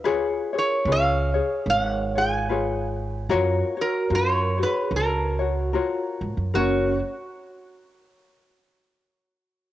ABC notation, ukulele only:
X:1
M:4/4
L:1/8
Q:"Swing" 1/4=74
K:F#
V:1 name="Ukulele"
[EGBc] [EGc] [EGBc] [Gc]2 [EGc] [EGBc]2 | [EFAc] [Fc] [EFAc] [Fc]2 [Fc] [EFAc]2 | [FAc] z6 z |]